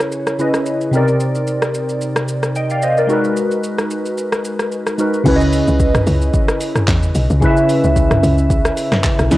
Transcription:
Already playing: C#3 C#4 E4 B4 C#5
0.00 cross-stick, shaker
0.12 shaker
0.27 cross-stick, shaker
0.39 C#3 C#4 E4 B4 D#5, shaker
0.54 cross-stick, shaker
0.66 shaker
0.81 shaker
0.91 C3 C4 D#4, shaker
0.95 A#4 D5
1.08 shaker
1.20 shaker
1.35 shaker
1.47 shaker
1.62 cross-stick, shaker
1.74 shaker
1.89 shaker
2.01 shaker
2.16 cross-stick, shaker
2.28 shaker
2.43 cross-stick, shaker
2.55 D#5 G5, shaker
2.70 D5 F5, shaker
2.82 C5 D#5, shaker
2.97 A#4 D5, shaker
3.07 G#3 D#4 F#4, shaker
3.11 A#4 B4
3.24 shaker
3.37 shaker
3.51 shaker
3.63 shaker
3.78 cross-stick, shaker
3.91 shaker
4.06 shaker
4.18 shaker
4.32 cross-stick, shaker
4.45 shaker
4.59 cross-stick, shaker
4.72 shaker
4.87 cross-stick, shaker
4.98 G#3 D#4 F#4 A#4 B4, shaker
5.14 shaker
5.24 C#2 C#3 C#4 E4, kick, crash, shaker
5.28 B4 C#5
5.36 D#5
5.41 shaker
5.53 open hi-hat, shaker
5.67 C#2, shaker
5.80 kick, shaker
5.95 cross-stick, mid tom, shaker
6.07 C#2, open hi-hat, shaker
6.22 shaker
6.34 kick, shaker
6.48 cross-stick, shaker
6.61 open hi-hat, shaker
6.76 cross-stick, mid tom, shaker
6.88 E2, kick, clap, shaker
7.03 shaker
7.15 B1, open hi-hat, shaker
7.30 C#2, shaker
7.40 C#3 C#4 E4, kick, shaker
7.44 B4 E5
7.57 shaker
7.69 open hi-hat, shaker
7.84 C#2, shaker
7.96 kick, shaker
8.11 cross-stick, mid tom, shaker
8.23 C#2, open hi-hat, shaker
8.38 shaker
8.50 kick, shaker
8.65 cross-stick, shaker
8.77 open hi-hat, shaker
8.92 cross-stick, snare, mid tom, shaker
9.04 kick, clap, shaker
9.19 B1, cross-stick, shaker
9.31 C#2 C#3 C#4 E4 B4 D#5, snare, open hi-hat, shaker

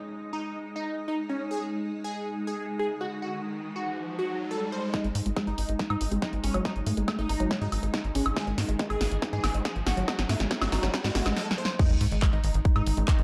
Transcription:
Already playing: G#3 D#4, downlifter
0.33 D#4
0.76 D#4
1.08 D#4
1.29 C#4
1.51 G#4, riser
2.04 G#4
2.47 G#4
2.79 G#4
3.01 F#4
3.22 F#4
3.76 F#4
4.19 F#4
4.51 A4
4.72 C5
4.94 G#3 D#4, kick, snare, closed hi-hat, riser
5.04 G#1 G#3, closed hi-hat
5.15 G#2, open hi-hat
5.26 G#1 G#3, closed hi-hat
5.37 G#3, kick, snare, closed hi-hat, high woodblock
5.47 G#1 D#4, closed hi-hat
5.58 G#1, open hi-hat
5.69 G#1, closed hi-hat
5.79 D#4, kick, snare, closed hi-hat
5.90 G#2 G#3 D#4, closed hi-hat, high woodblock
6.01 G#1, open hi-hat
6.11 G#1 G#3 C4, closed hi-hat
6.22 C4 D#4, kick, snare, closed hi-hat
6.33 G#1, closed hi-hat
6.44 G#1 G#3 C#4, open hi-hat
6.54 G#1 F#3, closed hi-hat, high woodblock
6.65 G#3 D#4, kick, snare, closed hi-hat
6.76 G#1, closed hi-hat
6.87 G#2 A3, open hi-hat
6.97 G#1 G#3, closed hi-hat
7.08 G#3 A3, kick, snare, closed hi-hat, high woodblock
7.19 G#1 A3 D#4, closed hi-hat
7.29 G#1 D#4, open hi-hat
7.40 G#1 F#3, closed hi-hat
7.51 kick, snare, closed hi-hat
7.61 G#2 G#3 D#4, closed hi-hat
7.72 G#1, open hi-hat, high woodblock
7.83 G#1 G#3, closed hi-hat
7.94 D#4, kick, snare, closed hi-hat
8.04 G#1, closed hi-hat
8.15 G#1 C#4 G#4, open hi-hat
8.26 G#1, closed hi-hat, high woodblock
8.37 G#3 G#4, kick, snare, closed hi-hat
8.47 G#1 G#3, closed hi-hat
8.58 G#2, snare, open hi-hat
8.69 G#1 G#3, closed hi-hat
8.79 G#3, kick, snare, closed hi-hat
8.90 G#1 G#4, closed hi-hat, high woodblock
9.01 G#1, snare, open hi-hat
9.12 G#1, closed hi-hat
9.22 D#4, kick, snare, closed hi-hat
9.33 G#2 G#3 G#4, closed hi-hat
9.44 G#1, snare, open hi-hat, high woodblock
9.54 G#1 G#3 C4, closed hi-hat
9.65 G#4, kick, snare, closed hi-hat
9.76 G#1, closed hi-hat
9.87 G#1 G#3 F#4, snare, open hi-hat
9.97 G#1 F#3, closed hi-hat
10.08 G#3 F#4, kick, snare, closed hi-hat, high woodblock
10.19 G#1, snare, closed hi-hat
10.29 G#2 A3, snare, open hi-hat
10.40 G#1 G#3, snare, closed hi-hat
10.51 A3, kick, snare, closed hi-hat
10.61 G#1 A3 F#4, snare, closed hi-hat, high woodblock
10.72 G#1 D#4, snare, open hi-hat
10.83 G#1 F#3 G#3, snare, closed hi-hat
10.94 kick, snare, closed hi-hat
11.04 G#2 G#3 F#4, snare, closed hi-hat
11.15 G#1 A3, snare, open hi-hat
11.26 G#1 G#3, snare, closed hi-hat, high woodblock
11.36 A4, snare
11.51 snare
11.58 C5
11.65 snare
11.79 F#3 G#3 D#4, kick, closed hi-hat, crash, sub drop
11.90 G#1 G#3, closed hi-hat
12.01 G#2, open hi-hat
12.12 G#1 G#3, closed hi-hat
12.22 G#3, kick, clap, closed hi-hat, high woodblock
12.33 G#1 D#4, closed hi-hat
12.44 G#1, open hi-hat
12.54 G#1, closed hi-hat
12.65 D#4, kick, closed hi-hat
12.76 G#2 G#3 D#4, closed hi-hat, high woodblock
12.87 G#1, open hi-hat
12.97 G#1 G#3 C4, closed hi-hat
13.08 C4 D#4, kick, clap, closed hi-hat
13.19 G#1, closed hi-hat

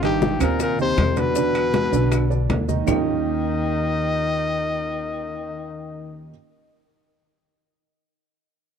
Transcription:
Already playing: G#1
0.02 G2 D#3 D#4 G4, high bongo, high conga, high timbale, maracas
0.21 high bongo, high conga, low timbale, maracas
0.40 D#2 A#2 C3 C4 A#4 C5, high conga, high timbale, claves, maracas
0.60 A#2 A#4, high bongo, high conga, high timbale, maracas
0.79 C3 D#3 D#4 G4 C5, high conga, maracas
0.97 E2, high bongo, low bongo, high conga, high timbale, low timbale, claves, maracas
1.16 B2 D3 D4 B4 D5, high bongo, high conga, high timbale, maracas
1.35 D3 D4 D5, high bongo, high conga, maracas
1.55 high bongo, high conga, high timbale, claves, maracas
1.73 G#3 G#4 B4, high bongo, high conga, high timbale, low timbale, maracas
1.92 B1 D3 D4 D5, high conga, maracas
2.12 high bongo, high conga, high timbale, claves, maracas
2.30 D3 D4 D5, high bongo, high conga, maracas
2.50 D#2, high bongo, low bongo, high conga, high timbale, low timbale, maracas
2.68 D#3 D#4 D#5, high bongo, high conga, maracas
2.86 D#2 D#3 A#3 C#4 D#4 F4 G4 D#5, low bongo, low conga, low timbale, claves, maracas

